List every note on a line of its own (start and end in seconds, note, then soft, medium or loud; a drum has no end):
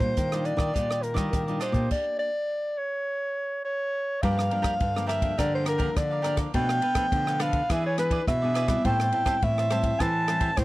0.00 0.13 A#2 medium
0.00 0.15 D#3 medium
0.00 0.26 G3 medium
0.00 0.27 D4 medium
0.00 0.27 F4 medium
0.00 0.47 C5 loud
0.00 muted cavaquinho stroke soft
0.00 kick medium
0.00 closed hi-hat soft
0.17 0.73 A#2 medium
0.17 0.55 D#3 medium
0.17 kick medium
0.17 closed hi-hat medium
0.32 0.72 G3 medium
0.32 0.72 D4 medium
0.32 0.72 F4 medium
0.32 0.44 G4 soft
0.32 0.45 D5 soft
0.32 0.44 D#5 soft
0.32 cross-stick medium
0.32 closed hi-hat soft
0.44 0.59 D4 medium
0.44 0.58 G4 soft
0.44 1.05 D5 medium
0.44 0.56 D5 medium
0.44 0.57 D#5 medium
0.44 closed hi-hat soft
0.57 0.71 D#3 medium
0.57 0.73 G4 soft
0.57 0.72 D5 medium
0.57 0.73 D#5 medium
0.57 kick medium
0.57 cross-stick medium
0.73 1.13 A#2 medium
0.73 1.31 D#3 medium
0.73 1.14 G3 medium
0.73 0.88 D4 medium
0.73 1.15 D4 medium
0.73 1.15 F4 medium
0.73 0.88 G4 medium
0.73 0.88 D5 medium
0.73 0.89 D#5 medium
0.73 kick medium
0.73 closed hi-hat medium
0.90 1.02 G4 soft
0.90 1.02 D5 soft
0.90 1.02 D#5 soft
0.90 cross-stick medium
1.02 1.61 A#4 medium
1.02 muted cavaquinho stroke soft
1.02 closed hi-hat soft
1.14 1.29 D#3 medium
1.14 1.42 G3 medium
1.14 1.43 D4 medium
1.14 1.46 G4 medium
1.14 1.44 D5 medium
1.14 1.45 D#5 medium
1.14 kick medium
1.14 cross-stick medium
1.14 closed hi-hat soft
1.18 1.43 F4 medium
1.33 1.89 A#2 medium
1.33 1.58 D#3 medium
1.33 kick medium
1.33 closed hi-hat medium
1.47 1.73 G3 medium
1.47 1.73 D4 medium
1.47 1.73 F4 medium
1.47 1.60 G4 soft
1.47 1.60 D5 soft
1.47 1.60 D#5 soft
1.47 closed hi-hat soft
1.60 1.75 D4 medium
1.60 1.73 G4 medium
1.60 1.89 C5 medium
1.60 1.71 D5 medium
1.60 1.73 D#5 medium
1.60 cross-stick medium
1.60 closed hi-hat soft
1.72 1.87 A#2 medium
1.72 2.29 A#3 medium
1.72 2.30 D4 medium
1.72 1.89 G4 soft
1.72 2.30 G4 medium
1.72 1.88 D5 soft
1.72 1.89 D#5 soft
1.72 kick medium
1.72 closed hi-hat soft
1.91 2.18 D5 medium
1.91 kick medium
1.91 crash medium
2.19 2.79 D5 medium
2.78 3.64 C#5 medium
3.65 4.24 C#5 medium
4.22 4.48 G2 loud
4.22 4.78 G2 medium
4.22 4.48 F3 medium
4.22 4.48 A#3 medium
4.22 4.48 D4 medium
4.22 4.36 G4 medium
4.22 4.37 A#4 medium
4.22 4.37 D5 medium
4.22 5.07 F5 medium
4.22 4.36 F5 medium
4.22 kick medium
4.22 ride soft
4.38 4.49 A#4 soft
4.38 4.50 D5 soft
4.38 4.51 F5 medium
4.38 cross-stick medium
4.50 4.79 F3 medium
4.50 4.79 A#3 medium
4.50 4.79 D4 medium
4.50 4.61 G4 soft
4.50 4.61 A#4 medium
4.50 4.62 D5 medium
4.50 4.62 F5 medium
4.50 ride soft
4.62 4.73 G4 medium
4.62 4.73 A#4 medium
4.62 4.74 D5 medium
4.62 4.74 F5 medium
4.62 kick medium
4.62 cross-stick medium
4.62 ride soft
4.80 5.30 G2 medium
4.80 5.36 D3 medium
4.80 kick medium
4.80 ride soft
4.95 5.20 F3 medium
4.95 5.21 A#3 medium
4.95 5.21 D4 medium
4.95 5.06 A#4 soft
4.95 5.06 D5 soft
4.95 5.07 F5 soft
4.95 cross-stick medium
5.06 5.36 G4 medium
5.06 5.36 A#4 medium
5.06 5.36 D5 medium
5.06 5.40 E5 medium
5.06 5.37 F5 medium
5.06 cross-stick medium
5.06 ride soft
5.22 5.33 F3 medium
5.22 5.34 A#3 medium
5.22 5.34 D4 medium
5.22 kick medium
5.22 ride medium
5.37 5.93 G2 medium
5.37 5.88 D3 medium
5.37 5.77 F3 medium
5.37 5.78 A#3 medium
5.37 5.78 D4 medium
5.37 5.63 G4 medium
5.37 5.64 A#4 medium
5.37 5.53 D5 medium
5.37 5.64 D5 medium
5.37 5.65 F5 medium
5.37 kick medium
5.37 cross-stick medium
5.37 ride medium
5.55 5.67 C5 medium
5.64 5.77 G4 soft
5.64 5.77 A#4 soft
5.64 5.78 D5 medium
5.64 5.78 F5 medium
5.64 cross-stick medium
5.64 ride medium
5.68 5.98 A#4 medium
5.78 6.20 F3 medium
5.78 6.20 A#3 medium
5.78 6.20 D4 medium
5.78 5.89 G4 medium
5.78 5.89 A#4 medium
5.78 5.89 D5 medium
5.78 5.90 F5 medium
5.78 kick medium
5.78 ride soft
5.96 6.46 D3 medium
5.96 6.52 D3 medium
5.96 6.38 D5 medium
5.96 kick medium
5.96 cross-stick medium
5.96 ride soft
6.11 6.22 A#4 soft
6.11 6.23 D5 soft
6.11 6.23 F5 medium
6.22 6.49 F3 medium
6.22 6.49 A#3 medium
6.22 6.50 D4 medium
6.22 6.37 G4 medium
6.22 6.37 A#4 medium
6.22 6.37 D5 medium
6.22 6.35 F5 medium
6.22 cross-stick medium
6.22 ride soft
6.36 6.52 A#4 soft
6.36 6.52 D5 soft
6.36 6.51 F5 medium
6.36 kick medium
6.36 cross-stick medium
6.36 ride medium
6.54 6.79 B2 loud
6.54 7.10 B2 medium
6.54 6.82 F3 medium
6.54 6.82 A3 medium
6.54 6.67 D4 medium
6.54 6.82 D4 medium
6.54 6.68 A4 medium
6.54 6.68 B4 medium
6.54 6.68 F5 medium
6.54 7.43 G5 loud
6.54 kick medium
6.54 ride medium
6.69 6.81 A4 soft
6.69 6.82 B4 soft
6.69 6.82 F5 medium
6.69 cross-stick medium
6.81 6.94 D4 soft
6.81 6.94 A4 medium
6.81 6.94 B4 medium
6.81 6.95 F5 medium
6.81 ride soft
6.95 7.35 F3 medium
6.95 7.35 A3 medium
6.95 7.05 D4 medium
6.95 7.35 D4 medium
6.95 7.05 A4 medium
6.95 7.06 B4 medium
6.95 7.06 F5 medium
6.95 kick medium
6.95 cross-stick medium
6.95 ride soft
7.12 7.67 B2 medium
7.12 7.61 D3 medium
7.12 kick medium
7.12 ride soft
7.27 7.38 A4 soft
7.27 7.39 B4 soft
7.27 7.40 F5 medium
7.27 cross-stick medium
7.39 7.59 F3 medium
7.39 7.59 A3 medium
7.39 7.68 D4 medium
7.39 7.59 D4 medium
7.39 7.68 A4 medium
7.39 7.68 B4 medium
7.39 7.69 F5 medium
7.39 7.73 F5 medium
7.39 cross-stick medium
7.39 ride medium
7.53 kick medium
7.53 ride soft
7.69 8.24 E3 medium
7.69 8.19 E3 medium
7.69 7.87 B3 medium
7.69 7.87 D4 medium
7.69 7.96 E4 medium
7.69 7.97 G#4 medium
7.69 7.87 G#4 medium
7.69 7.98 B4 medium
7.69 7.98 D5 medium
7.69 7.85 E5 loud
7.69 kick medium
7.69 cross-stick medium
7.69 ride medium
7.86 7.98 C#5 medium
7.98 8.37 B3 medium
7.98 8.37 D4 medium
7.98 8.10 E4 medium
7.98 8.10 G#4 soft
7.98 8.37 G#4 medium
7.98 8.25 B4 medium
7.98 8.11 B4 medium
7.98 8.11 D5 medium
7.98 cross-stick medium
7.98 ride medium
8.11 8.21 E4 medium
8.11 8.21 G#4 medium
8.11 8.21 B4 medium
8.11 8.21 D5 medium
8.11 kick medium
8.11 ride soft
8.27 8.82 B2 medium
8.27 8.76 B2 medium
8.27 8.87 E5 loud
8.27 kick medium
8.27 cross-stick medium
8.27 ride soft
8.42 8.67 B3 medium
8.42 8.67 D4 medium
8.42 8.53 G#4 soft
8.42 8.67 G#4 medium
8.42 8.54 B4 soft
8.42 8.55 D5 medium
8.54 8.68 E4 medium
8.54 8.68 G#4 medium
8.54 8.67 B4 medium
8.54 8.67 D5 medium
8.54 cross-stick medium
8.54 ride soft
8.68 9.22 G3 medium
8.68 9.23 C4 medium
8.68 9.23 E4 medium
8.68 8.83 G#4 soft
8.68 8.83 B4 medium
8.68 8.82 D5 medium
8.68 kick medium
8.68 cross-stick medium
8.68 ride soft
8.84 9.39 A2 medium
8.84 9.10 A2 loud
8.84 8.98 G4 medium
8.84 8.98 C5 medium
8.84 8.99 E5 medium
8.84 9.45 G5 loud
8.84 8.99 A5 medium
8.84 kick medium
8.84 ride soft
9.00 9.11 C5 soft
9.00 9.12 E5 soft
9.00 9.13 A5 medium
9.00 cross-stick medium
9.12 9.24 G4 medium
9.12 9.24 C5 soft
9.12 9.25 E5 medium
9.12 9.25 A5 medium
9.12 ride soft
9.25 9.66 G3 medium
9.25 9.66 C4 medium
9.25 9.66 E4 medium
9.25 9.36 G4 medium
9.25 9.36 C5 medium
9.25 9.36 E5 medium
9.25 9.36 A5 medium
9.25 kick medium
9.25 cross-stick medium
9.25 ride soft
9.42 9.92 A2 medium
9.42 9.97 E3 medium
9.42 10.02 E5 loud
9.42 kick medium
9.42 ride soft
9.58 9.69 C5 soft
9.58 9.70 E5 soft
9.58 9.70 A5 medium
9.58 cross-stick medium
9.70 10.08 G3 medium
9.70 10.08 C4 medium
9.70 10.08 E4 medium
9.70 9.98 G4 medium
9.70 9.98 C5 medium
9.70 9.99 E5 medium
9.70 9.99 A5 medium
9.70 cross-stick medium
9.70 ride soft
9.83 kick medium
9.83 ride soft
10.00 10.54 A2 medium
10.00 10.49 E3 medium
10.00 10.26 G4 medium
10.00 10.27 C5 medium
10.00 10.28 E5 medium
10.00 10.59 A5 loud
10.00 10.28 A5 medium
10.00 kick medium
10.00 cross-stick medium
10.00 ride soft
10.28 10.55 G3 medium
10.28 10.56 C4 medium
10.28 10.56 E4 medium
10.28 10.39 G4 soft
10.28 10.39 C5 medium
10.28 10.40 E5 medium
10.28 10.40 A5 medium
10.28 cross-stick medium
10.28 ride soft
10.40 10.51 G4 medium
10.40 10.51 C5 medium
10.40 10.51 E5 medium
10.40 10.51 A5 medium
10.40 kick medium
10.40 ride soft
10.57 10.64 A2 medium
10.57 10.64 E3 medium
10.57 10.64 C5 loud
10.57 kick medium
10.57 cross-stick medium
10.57 ride soft